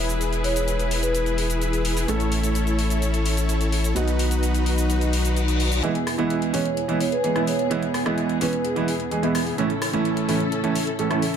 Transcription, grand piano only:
0.00 2.05 G#3 medium
0.00 2.05 B3 medium
0.00 2.06 E4 medium
0.00 2.06 G#4 medium
2.07 3.92 A2 medium
2.07 3.93 A3 medium
2.07 3.93 C#4 medium
2.07 3.93 E4 medium
2.07 3.94 A4 medium
3.95 5.80 B2 medium
3.95 5.80 F#3 medium
3.95 5.81 B3 medium
3.95 5.81 D#4 medium
3.95 5.81 F#4 medium
5.83 5.93 E3 medium
5.83 5.93 G#3 medium
5.83 5.93 B3 medium
5.83 5.93 E4 loud
6.18 6.51 E3 loud
6.18 6.51 G#3 medium
6.18 6.51 B3 medium
6.18 6.51 E4 loud
6.53 6.63 E3 medium
6.53 6.63 G#3 medium
6.53 6.63 B3 medium
6.53 6.63 C#4 medium
6.88 6.98 E3 medium
6.88 6.98 G#3 medium
6.88 6.98 B3 medium
6.88 6.99 E4 loud
7.23 7.33 E3 medium
7.23 7.33 G#3 medium
7.23 7.34 B3 medium
7.23 7.34 G#4 medium
7.35 7.45 E3 medium
7.35 7.45 G#3 medium
7.35 7.45 B3 medium
7.35 7.45 E4 medium
7.70 7.80 E3 medium
7.70 7.80 G#3 medium
7.70 7.80 B3 medium
7.70 7.81 E4 loud
8.05 8.38 E3 loud
8.05 8.38 G#3 medium
8.05 8.38 B3 medium
8.05 8.39 E4 loud
8.41 8.50 E3 medium
8.41 8.51 G#3 medium
8.41 8.51 B3 medium
8.41 8.51 C#4 medium
8.76 8.86 E3 medium
8.76 8.86 G#3 medium
8.76 8.86 B3 medium
8.76 8.86 E4 loud
9.11 9.21 E3 medium
9.11 9.21 G#3 medium
9.11 9.21 B3 medium
9.11 9.21 G#4 medium
9.23 9.32 E3 medium
9.23 9.33 G#3 medium
9.23 9.33 B3 medium
9.23 9.33 E4 medium
9.58 9.68 A2 medium
9.58 9.68 E3 medium
9.58 9.68 A3 medium
9.58 9.68 C#4 medium
9.58 9.68 E4 loud
9.93 10.26 A2 loud
9.93 10.26 E3 medium
9.93 10.26 A3 medium
9.93 10.26 C#4 medium
9.93 10.26 E4 loud
10.28 10.38 A2 medium
10.28 10.38 E3 medium
10.28 10.38 A3 medium
10.28 10.38 C#4 medium
10.28 10.38 E4 medium
10.63 10.73 A2 medium
10.63 10.73 E3 medium
10.63 10.73 A3 medium
10.63 10.73 C#4 medium
10.63 10.74 E4 loud
10.98 11.08 A2 medium
10.98 11.08 E3 medium
10.98 11.09 A3 medium
10.98 11.09 C#4 medium
10.98 11.09 A4 medium
11.10 11.20 A2 medium
11.10 11.20 E3 medium
11.10 11.20 A3 medium
11.10 11.20 C#4 medium
11.10 11.21 E4 medium

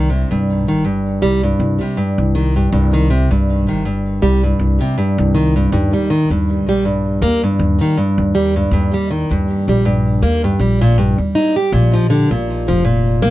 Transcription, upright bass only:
0.00 0.25 C2 medium
0.31 0.68 C2 medium
0.68 1.18 G1 medium
1.22 1.54 C2 medium
1.60 1.77 C2 medium
2.18 2.68 C2 medium
2.72 3.25 C2 medium
3.31 3.68 C2 medium
3.68 4.18 G1 medium
4.22 4.54 C2 medium
4.59 4.77 C2 medium
5.18 5.68 C2 loud
5.72 6.25 D#2 medium
6.30 6.68 D#2 medium
6.68 7.18 A#1 medium
7.22 7.54 D#2 medium
7.59 7.77 D#2 medium
8.18 8.68 D#2 medium
8.71 9.25 D#2 medium
9.30 9.69 D#2 medium
9.68 10.18 A#1 medium
10.22 10.54 D#2 medium
10.59 11.12 A#1 medium
11.18 11.32 D#2 medium
11.72 12.25 A#1 loud
12.31 12.70 A#1 medium
12.69 13.18 F1 medium
13.23 13.30 A#1 medium

